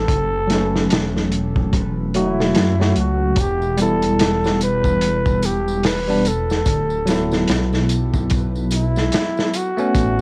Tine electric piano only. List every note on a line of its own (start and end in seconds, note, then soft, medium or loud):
0.47 2.10 F#3 medium
0.47 2.11 A3 medium
0.52 2.12 C#4 medium
2.14 2.74 F#3 medium
2.14 2.74 A3 medium
2.14 2.75 F#4 medium
2.79 3.35 F#3 medium
2.79 3.36 A3 medium
2.79 3.37 F#4 medium
3.77 6.02 G3 medium
3.77 6.03 B3 medium
3.82 6.04 E4 medium
6.08 6.26 G3 medium
6.08 6.26 B3 medium
6.08 6.27 D4 medium
7.06 9.71 F#3 medium
7.06 9.73 B3 medium
7.10 9.74 E4 medium
9.77 10.21 A3 medium
9.77 10.21 B3 medium
9.77 10.21 C#4 loud